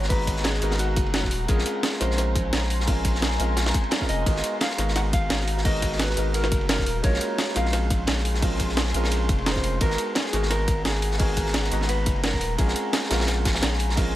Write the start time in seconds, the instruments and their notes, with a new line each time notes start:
Already playing: sub bass G#1, grand piano G#3 B3 D#4 F#4 A#4 A#5, ambient pad F#5 A#5
0.02 snare
0.08 grand piano G#3 B3 D#4 F#4 A#5, clean electric guitar B4, kick, closed hi-hat, open hi-hat
0.27 kick, closed hi-hat, ride
0.36 snare
0.44 clean electric guitar G#4, snare, closed hi-hat, ride
0.54 snare
0.60 sub bass G#1, grand piano G#3 B3 D#4 F#4 A#4, closed hi-hat, ride
0.71 snare
0.79 clean electric guitar F#4, closed hi-hat, ride
0.96 sub bass F#1, kick, closed hi-hat, ride
1.06 ride
1.14 clean electric guitar F#4, snare, closed hi-hat, ride
1.23 kick, snare
1.31 sub bass D#1, open hi-hat, ride
1.47 sub bass A#1, grand piano G#3 C4 C#4 F4 A#4, clean electric guitar G#4, ambient pad G#5 A#5 C6, kick, closed hi-hat, ride
1.58 snare
1.66 closed hi-hat, ride
1.83 snare, closed hi-hat, ride
1.93 snare
1.99 sub bass A#1, grand piano G#3 C4 C#4 F4 A#4, clean electric guitar C5, snare, closed hi-hat, ride
2.11 snare
2.18 snare, closed hi-hat, ride
2.36 kick, closed hi-hat, ride
2.53 sub bass A#1, snare, closed hi-hat, ride
2.62 snare
2.70 open hi-hat, ride
2.80 snare
2.86 grand piano G#3 C4 C#4 F4 A#4, kick, closed hi-hat, open hi-hat
3.05 kick, closed hi-hat, ride
3.15 snare
3.22 snare, closed hi-hat, ride
3.31 snare
3.38 sub bass A#1, grand piano G#3 C4 C#4 F4 A#4, closed hi-hat, ride
3.57 snare, closed hi-hat, ride
3.66 snare, ride
3.74 kick, closed hi-hat, ride
3.84 ride
3.91 snare, closed hi-hat, ride
4.00 grand piano G#3 C4 C#4 F4 A#4, kick, snare
4.09 sub bass F1, clean electric guitar D#5, open hi-hat, ride
4.25 sub bass G#1, grand piano G#3 B3 D#4 F#4 A#4, ambient pad F#4 A#5, kick, closed hi-hat, ride
4.36 snare
4.44 closed hi-hat, ride
4.61 clean electric guitar F5, snare, closed hi-hat, ride
4.70 snare
4.77 sub bass G#1, grand piano G#3 B3 D#4 F#4 A#4, snare, closed hi-hat, ride
4.88 snare
4.95 clean electric guitar F#5, snare, closed hi-hat, ride
5.13 clean electric guitar F5, kick, closed hi-hat, ride
5.30 sub bass G#1, snare, closed hi-hat, ride
5.40 snare
5.47 open hi-hat, ride
5.57 snare
5.63 grand piano G#3 B3 D#4 F#4 A#4, clean electric guitar D#5, kick, closed hi-hat, open hi-hat, ride
5.82 kick, closed hi-hat, ride
5.92 snare
5.99 clean electric guitar B4, snare, closed hi-hat, ride
6.10 snare
6.16 sub bass G#1, grand piano G#3 B3 D#4 F#4 A#4, closed hi-hat, ride
6.34 clean electric guitar A#4, closed hi-hat, ride
6.44 snare
6.52 sub bass F#1, kick, closed hi-hat, ride
6.61 ride
6.69 clean electric guitar A#4, snare, closed hi-hat, ride
6.79 kick, snare
6.86 sub bass D#1, open hi-hat, ride
7.02 sub bass A#1, grand piano G#3 A#3 C#4 F4 A#4, ambient pad G#4 C6, clean electric guitar C#5, kick, closed hi-hat, ride
7.14 snare
7.21 closed hi-hat, ride
7.38 snare, closed hi-hat, ride
7.48 snare
7.54 sub bass A#1, grand piano G#3 C4 C#4 F4 A#4, clean electric guitar F5, snare, closed hi-hat, ride
7.65 snare
7.73 snare, closed hi-hat, ride
7.90 kick, closed hi-hat, ride
8.07 sub bass A#1, snare, closed hi-hat, ride
8.17 snare
8.25 open hi-hat, ride
8.34 snare
8.41 grand piano G#3 C4 C#4 F4 A#4, kick, closed hi-hat, open hi-hat, ride
8.59 kick, closed hi-hat, ride
8.69 snare
8.77 snare, closed hi-hat, ride
8.86 snare
8.93 sub bass A#1, grand piano G#3 C4 C#4 F4 A#4, closed hi-hat, ride
9.04 snare
9.12 closed hi-hat, ride
9.29 sub bass F1, kick, closed hi-hat, ride
9.39 ride
9.46 clean electric guitar C5, snare, closed hi-hat, ride
9.55 grand piano G#3 C4 C#4 F4 A#4, kick, snare
9.64 open hi-hat, ride
9.80 sub bass G#1, grand piano G#3 B3 D#4 F#4 A#4, clean electric guitar A#4, ambient pad F#5 A#5, kick, closed hi-hat, ride
9.90 snare
9.98 closed hi-hat, ride
10.15 clean electric guitar G#4, snare, closed hi-hat, ride
10.26 snare
10.32 sub bass G#1, grand piano G#3 B3 D#4 F#4 A#4, snare, closed hi-hat, ride
10.43 snare
10.51 clean electric guitar A#4, snare, closed hi-hat, ride
10.68 kick, closed hi-hat, ride
10.85 sub bass G#1, clean electric guitar G#4, snare, closed hi-hat, ride
10.94 snare
11.02 open hi-hat, ride
11.11 snare
11.18 grand piano G#3 B3 D#4 F#4 A#4, clean electric guitar G#4, kick, closed hi-hat, open hi-hat, ride
11.37 kick, closed hi-hat, ride
11.46 snare
11.54 snare, closed hi-hat, ride
11.63 snare
11.70 sub bass G#1, grand piano G#3 B3 D#4 F#4 A#5, closed hi-hat, ride
11.81 snare
11.89 clean electric guitar B4, closed hi-hat, ride
12.06 sub bass F#1, kick, closed hi-hat, ride
12.16 ride
12.24 clean electric guitar A#4, snare, closed hi-hat, ride
12.33 kick, snare
12.41 sub bass D#1, open hi-hat, ride
12.57 sub bass A#1, grand piano G#3 C4 C#4 F4 A#4, clean electric guitar G#4, ambient pad G#5 A#5 C6, kick, closed hi-hat, ride
12.68 snare
12.76 closed hi-hat, ride
12.93 snare, closed hi-hat, ride
13.03 snare
13.09 sub bass A#1, grand piano G#3 C4 C#4 F4 A#4, snare, closed hi-hat, ride
13.20 snare, ride
13.27 snare, closed hi-hat, ride
13.45 kick, snare, closed hi-hat, ride
13.55 snare, ride
13.62 sub bass A#1, snare, closed hi-hat, ride
13.73 snare
13.79 open hi-hat, ride
13.89 snare
13.95 grand piano G#3 C4 C#4 F4 A#4, kick, closed hi-hat, open hi-hat, ride